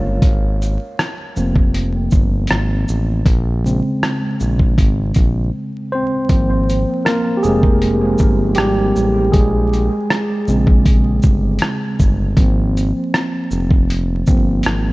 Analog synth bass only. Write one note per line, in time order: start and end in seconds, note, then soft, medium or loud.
0.00 0.19 G1 medium
0.22 0.77 G#1 loud
1.37 2.09 F1 medium
2.12 2.47 G1 medium
2.51 2.85 G#1 loud
2.89 3.23 A1 medium
3.26 3.81 A#1 loud
4.41 4.75 A#1 medium
4.78 5.13 G#1 medium
5.16 5.50 A#1 medium
6.30 6.85 G#1 loud
7.44 8.16 F1 medium
8.20 8.54 G1 medium
8.58 8.92 G#1 medium
8.96 9.30 A1 medium
9.34 9.89 A#1 loud
10.48 11.20 A#1 medium
11.24 11.58 G1 medium
12.00 12.34 G1 medium
12.37 12.92 G#1 loud
13.51 14.23 F1 medium
14.28 14.62 G1 medium
14.66 14.93 G#1 medium